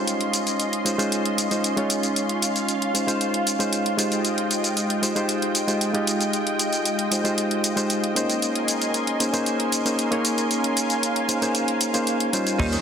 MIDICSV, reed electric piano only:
0, 0, Header, 1, 2, 480
1, 0, Start_track
1, 0, Tempo, 521739
1, 68, Time_signature, 4, 2, 24, 8
1, 11788, End_track
2, 0, Start_track
2, 0, Title_t, "Reed electric piano"
2, 0, Program_c, 0, 4
2, 0, Note_on_c, 0, 56, 81
2, 0, Note_on_c, 0, 61, 74
2, 0, Note_on_c, 0, 63, 73
2, 0, Note_on_c, 0, 65, 74
2, 0, Note_on_c, 0, 72, 90
2, 752, Note_off_c, 0, 56, 0
2, 753, Note_off_c, 0, 61, 0
2, 757, Note_off_c, 0, 63, 0
2, 758, Note_off_c, 0, 65, 0
2, 762, Note_off_c, 0, 72, 0
2, 779, Note_on_c, 0, 56, 74
2, 781, Note_on_c, 0, 61, 66
2, 785, Note_on_c, 0, 63, 65
2, 787, Note_on_c, 0, 65, 67
2, 790, Note_on_c, 0, 72, 81
2, 876, Note_off_c, 0, 56, 0
2, 877, Note_off_c, 0, 61, 0
2, 879, Note_off_c, 0, 63, 0
2, 880, Note_off_c, 0, 65, 0
2, 882, Note_off_c, 0, 72, 0
2, 902, Note_on_c, 0, 56, 88
2, 905, Note_on_c, 0, 61, 77
2, 905, Note_on_c, 0, 63, 77
2, 907, Note_on_c, 0, 65, 77
2, 911, Note_on_c, 0, 72, 94
2, 1356, Note_off_c, 0, 56, 0
2, 1358, Note_off_c, 0, 61, 0
2, 1358, Note_off_c, 0, 63, 0
2, 1359, Note_off_c, 0, 65, 0
2, 1361, Note_off_c, 0, 72, 0
2, 1387, Note_on_c, 0, 56, 72
2, 1391, Note_on_c, 0, 61, 66
2, 1392, Note_on_c, 0, 63, 68
2, 1395, Note_on_c, 0, 65, 66
2, 1397, Note_on_c, 0, 72, 80
2, 1599, Note_off_c, 0, 56, 0
2, 1601, Note_off_c, 0, 61, 0
2, 1602, Note_off_c, 0, 63, 0
2, 1603, Note_off_c, 0, 65, 0
2, 1604, Note_off_c, 0, 72, 0
2, 1623, Note_on_c, 0, 56, 88
2, 1628, Note_on_c, 0, 61, 81
2, 1630, Note_on_c, 0, 63, 79
2, 1634, Note_on_c, 0, 65, 80
2, 1640, Note_on_c, 0, 73, 96
2, 2676, Note_off_c, 0, 56, 0
2, 2678, Note_off_c, 0, 61, 0
2, 2680, Note_off_c, 0, 63, 0
2, 2682, Note_off_c, 0, 65, 0
2, 2685, Note_off_c, 0, 73, 0
2, 2707, Note_on_c, 0, 56, 67
2, 2707, Note_on_c, 0, 61, 59
2, 2710, Note_on_c, 0, 63, 60
2, 2711, Note_on_c, 0, 65, 60
2, 2714, Note_on_c, 0, 72, 72
2, 2800, Note_off_c, 0, 56, 0
2, 2800, Note_off_c, 0, 61, 0
2, 2802, Note_off_c, 0, 63, 0
2, 2802, Note_off_c, 0, 65, 0
2, 2804, Note_off_c, 0, 72, 0
2, 2821, Note_on_c, 0, 56, 73
2, 2824, Note_on_c, 0, 61, 65
2, 2828, Note_on_c, 0, 63, 66
2, 2829, Note_on_c, 0, 65, 67
2, 2832, Note_on_c, 0, 72, 82
2, 3276, Note_off_c, 0, 56, 0
2, 3278, Note_off_c, 0, 61, 0
2, 3280, Note_off_c, 0, 63, 0
2, 3280, Note_off_c, 0, 65, 0
2, 3282, Note_off_c, 0, 72, 0
2, 3304, Note_on_c, 0, 56, 82
2, 3306, Note_on_c, 0, 61, 73
2, 3308, Note_on_c, 0, 63, 74
2, 3310, Note_on_c, 0, 65, 71
2, 3311, Note_on_c, 0, 72, 86
2, 3637, Note_off_c, 0, 56, 0
2, 3637, Note_off_c, 0, 61, 0
2, 3638, Note_off_c, 0, 63, 0
2, 3640, Note_off_c, 0, 65, 0
2, 3640, Note_off_c, 0, 72, 0
2, 3655, Note_on_c, 0, 56, 82
2, 3660, Note_on_c, 0, 63, 74
2, 3664, Note_on_c, 0, 65, 74
2, 3669, Note_on_c, 0, 67, 73
2, 3675, Note_on_c, 0, 72, 89
2, 4593, Note_off_c, 0, 56, 0
2, 4595, Note_off_c, 0, 63, 0
2, 4597, Note_off_c, 0, 65, 0
2, 4600, Note_off_c, 0, 67, 0
2, 4603, Note_off_c, 0, 72, 0
2, 4615, Note_on_c, 0, 56, 74
2, 4620, Note_on_c, 0, 63, 67
2, 4621, Note_on_c, 0, 65, 67
2, 4624, Note_on_c, 0, 67, 67
2, 4625, Note_on_c, 0, 72, 82
2, 4714, Note_off_c, 0, 56, 0
2, 4716, Note_off_c, 0, 63, 0
2, 4717, Note_off_c, 0, 65, 0
2, 4718, Note_off_c, 0, 67, 0
2, 4719, Note_off_c, 0, 72, 0
2, 4743, Note_on_c, 0, 56, 84
2, 4745, Note_on_c, 0, 63, 79
2, 4749, Note_on_c, 0, 65, 77
2, 4751, Note_on_c, 0, 67, 79
2, 4753, Note_on_c, 0, 72, 92
2, 5197, Note_off_c, 0, 56, 0
2, 5198, Note_off_c, 0, 63, 0
2, 5200, Note_off_c, 0, 65, 0
2, 5201, Note_off_c, 0, 67, 0
2, 5202, Note_off_c, 0, 72, 0
2, 5221, Note_on_c, 0, 56, 72
2, 5223, Note_on_c, 0, 63, 67
2, 5224, Note_on_c, 0, 65, 69
2, 5225, Note_on_c, 0, 67, 68
2, 5228, Note_on_c, 0, 72, 81
2, 5436, Note_off_c, 0, 56, 0
2, 5437, Note_off_c, 0, 63, 0
2, 5438, Note_off_c, 0, 65, 0
2, 5438, Note_off_c, 0, 67, 0
2, 5440, Note_off_c, 0, 72, 0
2, 5459, Note_on_c, 0, 56, 89
2, 5462, Note_on_c, 0, 63, 80
2, 5467, Note_on_c, 0, 65, 82
2, 5471, Note_on_c, 0, 67, 82
2, 5475, Note_on_c, 0, 75, 94
2, 6514, Note_off_c, 0, 56, 0
2, 6516, Note_off_c, 0, 63, 0
2, 6518, Note_off_c, 0, 65, 0
2, 6520, Note_off_c, 0, 67, 0
2, 6522, Note_off_c, 0, 75, 0
2, 6541, Note_on_c, 0, 56, 68
2, 6544, Note_on_c, 0, 63, 61
2, 6546, Note_on_c, 0, 65, 61
2, 6550, Note_on_c, 0, 67, 62
2, 6553, Note_on_c, 0, 72, 74
2, 6637, Note_off_c, 0, 56, 0
2, 6638, Note_off_c, 0, 63, 0
2, 6640, Note_off_c, 0, 65, 0
2, 6641, Note_off_c, 0, 67, 0
2, 6643, Note_off_c, 0, 72, 0
2, 6661, Note_on_c, 0, 56, 73
2, 6664, Note_on_c, 0, 63, 68
2, 6665, Note_on_c, 0, 65, 68
2, 6666, Note_on_c, 0, 67, 69
2, 6670, Note_on_c, 0, 72, 84
2, 7116, Note_off_c, 0, 56, 0
2, 7117, Note_off_c, 0, 63, 0
2, 7118, Note_off_c, 0, 65, 0
2, 7119, Note_off_c, 0, 67, 0
2, 7121, Note_off_c, 0, 72, 0
2, 7139, Note_on_c, 0, 56, 83
2, 7143, Note_on_c, 0, 63, 75
2, 7146, Note_on_c, 0, 65, 75
2, 7148, Note_on_c, 0, 67, 76
2, 7151, Note_on_c, 0, 72, 93
2, 7474, Note_off_c, 0, 56, 0
2, 7476, Note_off_c, 0, 63, 0
2, 7478, Note_off_c, 0, 65, 0
2, 7479, Note_off_c, 0, 67, 0
2, 7480, Note_off_c, 0, 72, 0
2, 7498, Note_on_c, 0, 58, 84
2, 7502, Note_on_c, 0, 61, 76
2, 7508, Note_on_c, 0, 63, 77
2, 7512, Note_on_c, 0, 68, 77
2, 7517, Note_on_c, 0, 72, 92
2, 8434, Note_off_c, 0, 58, 0
2, 8436, Note_off_c, 0, 61, 0
2, 8439, Note_off_c, 0, 63, 0
2, 8441, Note_off_c, 0, 68, 0
2, 8444, Note_off_c, 0, 72, 0
2, 8464, Note_on_c, 0, 58, 74
2, 8466, Note_on_c, 0, 61, 69
2, 8468, Note_on_c, 0, 63, 68
2, 8471, Note_on_c, 0, 68, 70
2, 8475, Note_on_c, 0, 72, 82
2, 8559, Note_off_c, 0, 58, 0
2, 8559, Note_off_c, 0, 61, 0
2, 8561, Note_off_c, 0, 63, 0
2, 8562, Note_off_c, 0, 68, 0
2, 8564, Note_off_c, 0, 72, 0
2, 8585, Note_on_c, 0, 58, 86
2, 8585, Note_on_c, 0, 61, 82
2, 8590, Note_on_c, 0, 63, 80
2, 8592, Note_on_c, 0, 72, 95
2, 8593, Note_on_c, 0, 68, 79
2, 9038, Note_off_c, 0, 58, 0
2, 9038, Note_off_c, 0, 61, 0
2, 9041, Note_off_c, 0, 63, 0
2, 9041, Note_off_c, 0, 72, 0
2, 9042, Note_off_c, 0, 68, 0
2, 9063, Note_on_c, 0, 58, 75
2, 9067, Note_on_c, 0, 61, 71
2, 9070, Note_on_c, 0, 63, 69
2, 9073, Note_on_c, 0, 68, 70
2, 9074, Note_on_c, 0, 72, 84
2, 9277, Note_off_c, 0, 58, 0
2, 9279, Note_off_c, 0, 61, 0
2, 9281, Note_off_c, 0, 63, 0
2, 9282, Note_off_c, 0, 68, 0
2, 9282, Note_off_c, 0, 72, 0
2, 9299, Note_on_c, 0, 58, 92
2, 9303, Note_on_c, 0, 61, 85
2, 9308, Note_on_c, 0, 63, 82
2, 9312, Note_on_c, 0, 68, 84
2, 9317, Note_on_c, 0, 73, 98
2, 10354, Note_off_c, 0, 58, 0
2, 10356, Note_off_c, 0, 61, 0
2, 10358, Note_off_c, 0, 63, 0
2, 10361, Note_off_c, 0, 68, 0
2, 10363, Note_off_c, 0, 73, 0
2, 10378, Note_on_c, 0, 58, 68
2, 10379, Note_on_c, 0, 61, 64
2, 10382, Note_on_c, 0, 63, 62
2, 10383, Note_on_c, 0, 68, 61
2, 10386, Note_on_c, 0, 72, 76
2, 10476, Note_off_c, 0, 58, 0
2, 10476, Note_off_c, 0, 61, 0
2, 10477, Note_off_c, 0, 63, 0
2, 10478, Note_off_c, 0, 68, 0
2, 10479, Note_off_c, 0, 72, 0
2, 10503, Note_on_c, 0, 58, 77
2, 10507, Note_on_c, 0, 61, 71
2, 10511, Note_on_c, 0, 63, 70
2, 10511, Note_on_c, 0, 68, 70
2, 10514, Note_on_c, 0, 72, 85
2, 10957, Note_off_c, 0, 58, 0
2, 10959, Note_off_c, 0, 61, 0
2, 10961, Note_off_c, 0, 63, 0
2, 10961, Note_off_c, 0, 68, 0
2, 10963, Note_off_c, 0, 72, 0
2, 10981, Note_on_c, 0, 58, 83
2, 10985, Note_on_c, 0, 61, 75
2, 10985, Note_on_c, 0, 63, 77
2, 10988, Note_on_c, 0, 68, 78
2, 10990, Note_on_c, 0, 72, 91
2, 11315, Note_off_c, 0, 58, 0
2, 11317, Note_off_c, 0, 61, 0
2, 11317, Note_off_c, 0, 63, 0
2, 11319, Note_off_c, 0, 68, 0
2, 11320, Note_off_c, 0, 72, 0
2, 11342, Note_on_c, 0, 55, 85
2, 11345, Note_on_c, 0, 61, 80
2, 11345, Note_on_c, 0, 63, 77
2, 11348, Note_on_c, 0, 65, 77
2, 11351, Note_on_c, 0, 72, 92
2, 11568, Note_off_c, 0, 55, 0
2, 11574, Note_off_c, 0, 61, 0
2, 11578, Note_off_c, 0, 63, 0
2, 11579, Note_on_c, 0, 55, 96
2, 11584, Note_off_c, 0, 65, 0
2, 11585, Note_on_c, 0, 61, 90
2, 11588, Note_off_c, 0, 72, 0
2, 11589, Note_on_c, 0, 63, 89
2, 11595, Note_on_c, 0, 65, 89
2, 11599, Note_on_c, 0, 72, 105
2, 11788, Note_off_c, 0, 55, 0
2, 11788, Note_off_c, 0, 61, 0
2, 11788, Note_off_c, 0, 63, 0
2, 11788, Note_off_c, 0, 65, 0
2, 11788, Note_off_c, 0, 72, 0
2, 11788, End_track
0, 0, End_of_file